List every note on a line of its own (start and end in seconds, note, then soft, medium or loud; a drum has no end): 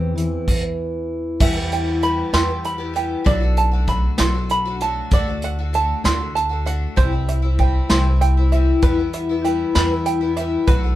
0.00 0.35 E2 medium
0.00 2.33 E2 medium
0.00 0.14 E3 medium
0.00 0.44 C4 medium
0.00 0.16 G4 medium
0.15 2.33 E3 medium
0.15 2.34 E4 soft
0.15 closed hi-hat medium
0.48 kick medium
0.48 crash medium
1.40 1.56 E2 medium
1.40 2.21 E2 medium
1.40 1.56 B2 medium
1.40 1.56 E3 medium
1.40 1.57 G3 medium
1.40 1.56 B3 medium
1.40 1.54 G4 medium
1.40 2.65 E5 medium
1.40 kick loud
1.40 crash loud
1.56 1.88 E3 soft
1.56 1.86 G3 soft
1.56 1.86 B3 soft
1.56 1.85 G4 soft
1.72 2.95 G5 medium
1.72 closed hi-hat medium
1.86 2.00 E3 soft
1.86 2.01 G3 soft
1.86 2.02 B3 soft
1.86 2.02 G4 medium
2.01 2.33 E3 medium
2.01 2.33 G3 medium
2.01 2.33 B3 medium
2.01 2.33 G4 medium
2.01 2.33 B5 medium
2.01 closed hi-hat medium
2.33 3.13 E2 medium
2.33 2.49 E2 medium
2.33 2.49 B2 medium
2.33 2.49 E3 medium
2.33 2.49 G3 medium
2.33 2.48 B3 medium
2.33 2.47 G4 medium
2.33 2.65 C6 medium
2.33 snare loud
2.33 closed hi-hat medium
2.48 2.80 E3 soft
2.48 2.79 G3 soft
2.48 2.78 B3 soft
2.48 2.77 G4 medium
2.64 3.27 B5 medium
2.64 closed hi-hat medium
2.78 2.92 E3 soft
2.78 2.93 G3 medium
2.78 2.94 B3 medium
2.78 2.95 G4 medium
2.94 3.24 E3 medium
2.94 3.26 G3 medium
2.94 3.26 B3 medium
2.94 3.26 G4 medium
2.94 3.27 G5 medium
2.94 closed hi-hat medium
3.24 4.06 B1 loud
3.24 3.41 B2 medium
3.24 3.41 F#3 medium
3.24 3.42 A3 medium
3.24 3.41 D4 medium
3.24 3.39 F#4 loud
3.24 4.50 D5 medium
3.24 kick loud
3.24 closed hi-hat medium
3.40 3.73 A3 medium
3.40 3.72 D4 medium
3.40 3.70 F#4 medium
3.57 4.81 A5 medium
3.57 closed hi-hat medium
3.72 3.88 A3 soft
3.72 3.89 D4 medium
3.72 3.88 F#4 medium
3.87 4.17 F#3 medium
3.87 4.18 A3 medium
3.87 4.19 D4 medium
3.87 4.20 F#4 medium
3.87 4.20 B5 medium
3.87 kick medium
3.87 closed hi-hat medium
4.18 4.99 B1 medium
4.18 4.34 B2 medium
4.18 4.34 F#3 medium
4.18 4.35 A3 medium
4.18 4.35 D4 medium
4.18 4.33 F#4 medium
4.18 4.51 C6 medium
4.18 snare loud
4.18 closed hi-hat medium
4.35 4.67 A3 soft
4.35 4.66 D4 medium
4.35 4.64 F#4 medium
4.49 5.12 B5 medium
4.49 closed hi-hat medium
4.65 4.81 A3 medium
4.65 4.82 D4 medium
4.65 4.81 F#4 medium
4.80 5.12 F#3 medium
4.80 5.12 A3 medium
4.80 5.13 D4 medium
4.80 5.13 F#4 medium
4.80 5.12 A5 medium
4.80 closed hi-hat medium
5.11 5.91 D2 medium
5.11 5.28 D3 medium
5.11 5.28 A3 medium
5.11 5.29 D4 medium
5.11 5.26 F#4 loud
5.11 6.36 D5 medium
5.11 kick loud
5.11 closed hi-hat medium
5.27 5.60 A3 soft
5.27 5.59 D4 soft
5.27 5.57 F#4 medium
5.42 6.65 F#5 medium
5.42 closed hi-hat medium
5.59 5.73 A3 soft
5.59 5.73 D4 soft
5.59 5.74 F#4 medium
5.73 6.03 D3 medium
5.73 6.04 A3 medium
5.73 6.04 D4 medium
5.73 6.05 F#4 medium
5.73 6.05 A5 medium
5.73 closed hi-hat medium
6.04 6.84 D2 medium
6.04 6.20 D3 medium
6.04 6.20 A3 medium
6.04 6.19 D4 medium
6.04 6.18 F#4 medium
6.04 6.35 C6 medium
6.04 snare loud
6.04 closed hi-hat medium
6.19 6.52 A3 soft
6.19 6.50 D4 soft
6.19 6.48 F#4 soft
6.35 6.97 A5 medium
6.35 closed hi-hat medium
6.49 6.66 A3 soft
6.49 6.66 D4 medium
6.49 6.66 F#4 medium
6.66 6.96 D3 medium
6.66 6.97 A3 medium
6.66 6.97 D4 medium
6.66 6.98 F#4 medium
6.66 6.97 F#5 medium
6.66 closed hi-hat medium
6.96 7.77 C2 medium
6.96 7.12 C3 medium
6.96 7.12 E3 medium
6.96 7.13 G3 medium
6.96 7.12 C4 medium
6.96 7.11 E4 medium
6.96 8.21 C5 medium
6.96 kick loud
6.96 closed hi-hat medium
7.12 7.44 G3 soft
7.12 7.43 C4 soft
7.12 7.41 E4 medium
7.28 8.51 E5 medium
7.28 closed hi-hat medium
7.42 7.58 G3 soft
7.42 7.59 C4 medium
7.42 7.58 E4 medium
7.58 7.90 E3 medium
7.58 7.90 G3 medium
7.58 7.91 C4 medium
7.58 7.91 E4 medium
7.58 8.20 G5 medium
7.58 kick medium
7.58 closed hi-hat medium
7.90 8.70 C2 loud
7.90 8.06 C3 medium
7.90 8.06 E3 medium
7.90 8.06 G3 medium
7.90 8.06 C4 medium
7.90 8.04 E4 medium
7.90 8.83 C6 medium
7.90 snare loud
7.90 closed hi-hat medium
8.05 8.38 G3 soft
8.05 8.37 C4 soft
8.05 8.36 E4 medium
8.21 8.83 G5 medium
8.21 closed hi-hat medium
8.37 8.53 G3 soft
8.37 8.53 C4 medium
8.37 8.52 E4 medium
8.52 8.82 E3 medium
8.52 8.83 G3 medium
8.52 8.84 C4 medium
8.52 8.83 E4 medium
8.52 8.83 E5 medium
8.52 closed hi-hat medium
8.82 8.98 E2 medium
8.82 9.62 E2 medium
8.82 8.98 B2 medium
8.82 8.98 E3 medium
8.82 8.99 G3 medium
8.82 8.98 B3 medium
8.82 8.96 E4 medium
8.82 10.06 B4 medium
8.82 kick loud
8.82 closed hi-hat medium
8.98 9.30 E3 soft
8.98 9.30 G3 soft
8.98 9.30 B3 medium
8.98 9.28 E4 soft
9.13 10.35 E5 medium
9.13 closed hi-hat medium
9.29 9.43 E3 soft
9.29 9.44 G3 soft
9.29 9.45 B3 medium
9.29 9.44 E4 medium
9.44 9.75 E3 medium
9.44 9.76 G3 medium
9.44 9.76 B3 medium
9.44 9.77 E4 medium
9.44 10.05 G5 medium
9.44 closed hi-hat medium
9.75 10.55 E2 medium
9.75 9.91 E2 medium
9.75 9.92 B2 medium
9.75 9.92 E3 medium
9.75 9.92 G3 medium
9.75 9.91 B3 medium
9.75 9.90 E4 medium
9.75 10.68 B5 medium
9.75 snare loud
9.75 closed hi-hat medium
9.91 10.23 E3 soft
9.91 10.22 G3 soft
9.91 10.21 B3 soft
9.91 10.20 E4 soft
10.06 10.68 G5 medium
10.06 closed hi-hat medium
10.21 10.36 E3 soft
10.21 10.37 G3 medium
10.21 10.37 B3 medium
10.21 10.37 E4 medium
10.37 10.67 E3 medium
10.37 10.68 G3 medium
10.37 10.69 B3 medium
10.37 10.69 E4 medium
10.37 10.68 E5 medium
10.37 closed hi-hat medium
10.67 10.96 B1 medium
10.67 10.83 B2 medium
10.67 10.83 F#3 medium
10.67 10.84 A3 medium
10.67 10.83 D4 medium
10.67 10.82 F#4 medium
10.67 10.96 B4 medium
10.67 kick loud
10.67 closed hi-hat medium
10.83 10.96 A3 soft
10.83 10.96 D4 medium
10.83 10.96 F#4 medium